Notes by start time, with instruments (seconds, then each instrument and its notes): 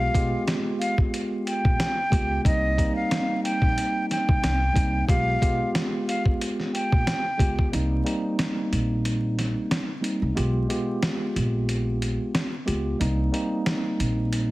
Already playing: tine electric piano G#3 B3 F4 G4, flute F5
0.14 upright bass B1, tine electric piano G#3 B3 F4 G4, kick, closed hi-hat
0.48 snare, closed hi-hat
0.80 flute F5, closed hi-hat
0.98 kick
1.14 closed hi-hat
1.47 flute G5, closed hi-hat
1.65 upright bass A#1, kick
1.80 snare, closed hi-hat
2.10 upright bass C#2, tine electric piano G#3 B3 F4 G4, kick, closed hi-hat
2.44 upright bass C2, tine electric piano G3 A#3 C4 D#4, flute D#5, kick, closed hi-hat
2.77 tine electric piano G3 A#3 C4 D#4, kick, closed hi-hat
2.96 flute F5
3.11 snare, closed hi-hat
3.43 flute G5, closed hi-hat
3.62 upright bass A#1, kick
3.78 closed hi-hat
4.11 flute G5, snare, closed hi-hat
4.29 upright bass C2, kick
4.44 upright bass C2, snare, closed hi-hat
4.73 upright bass C2, tine electric piano G3 A#3 C4 D#4, kick, closed hi-hat
5.08 upright bass B1, tine electric piano G#3 B3 F4 G4, flute F5, kick, closed hi-hat
5.41 upright bass B1, tine electric piano G#3 B3 F4 G4, kick, closed hi-hat
5.75 snare, closed hi-hat
6.08 flute F5, closed hi-hat
6.26 kick
6.41 closed hi-hat
6.60 snare
6.74 flute G5, closed hi-hat
6.92 upright bass A#1, kick
7.07 snare, closed hi-hat
7.38 upright bass C#2, tine electric piano G#3 B3 F4 G4, kick, closed hi-hat
7.59 kick
7.72 upright bass C2, tine electric piano G3 A#3 C4 D#4, closed hi-hat
8.04 tine electric piano G3 A#3 C4 D#4, closed hi-hat
8.39 snare, closed hi-hat
8.72 upright bass A#1, closed hi-hat
9.05 closed hi-hat
9.38 snare, closed hi-hat
9.71 snare, closed hi-hat
10.01 tine electric piano G3 A#3 C4 D#4, closed hi-hat
10.22 upright bass C2
10.35 upright bass B1, tine electric piano G#3 B3 F4 G4, closed hi-hat
10.68 tine electric piano G#3 B3 F4 G4, closed hi-hat
11.03 snare, closed hi-hat
11.36 upright bass A#1, closed hi-hat
11.69 closed hi-hat
12.02 closed hi-hat
12.35 snare, closed hi-hat
12.65 upright bass C#2, tine electric piano G#3 B3 F4 G4, closed hi-hat
12.99 upright bass C2, tine electric piano G3 A#3 C4 D#4, closed hi-hat
13.32 tine electric piano G3 A#3 C4 D#4, closed hi-hat
13.66 snare, closed hi-hat
14.00 upright bass A#1, closed hi-hat
14.33 closed hi-hat